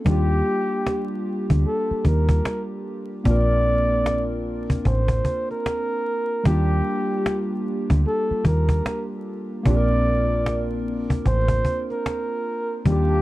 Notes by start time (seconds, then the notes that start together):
0.05 D#2 G3 A#3 D4 G4, cajon bass
0.10 F4 G4
0.86 cajon slap
1.50 D2, cajon bass
1.67 A4
1.91 muted fingered electric bass stroke
2.05 D#2 A#4, cajon bass
2.29 cajon bass, cajon slap
2.45 cajon slap
3.24 A#1 A#3 C4 D4 D5, cajon bass
3.29 F4 A#4
4.06 cajon slap
4.70 cajon bass
4.85 A1 C5, cajon bass
5.08 cajon bass
5.25 cajon bass
5.51 A#4, cajon slap
5.66 cajon slap
6.43 D#2 G3 A#3 D4 G4, cajon bass
6.48 F4 G4
7.26 cajon slap
7.90 D2, cajon bass
8.07 A4
8.31 muted fingered electric bass stroke
8.45 D#2 A#4, cajon bass
8.69 cajon bass, cajon slap
8.86 cajon slap
9.63 A#1 A#3 C4 D4 D5, cajon bass
9.68 F4 G4
9.76 A#4
10.46 cajon slap
11.10 cajon bass
11.25 A1 C5, cajon bass
11.48 cajon bass
11.65 cajon bass
11.91 A#4, cajon slap
12.06 cajon slap
12.85 D#2 G3 A#3 D4 G4 F5 A5 D6, cajon bass
12.90 F4 G4
13.09 cajon slap